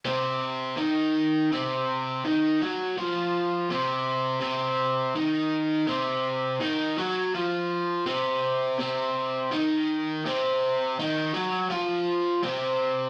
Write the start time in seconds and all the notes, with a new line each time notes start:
0.05 C3 C4
0.77 D#3 D#4
1.51 C3 C4
2.25 D#3 D#4
2.62 F#3 F#4
2.97 F3 F4
3.70 C3 C4
4.41 C3 C4
5.15 D#3 D#4
5.87 C3 C4
6.60 D#3 D#4
6.97 F#3 F#4
7.34 F3 F4
8.06 C3 C4
8.79 C3 C4
9.52 D#3 D#4
10.25 C3 C4
10.99 D#3 D#4
11.34 F#3 F#4
11.70 F3 F4
12.43 C3 C4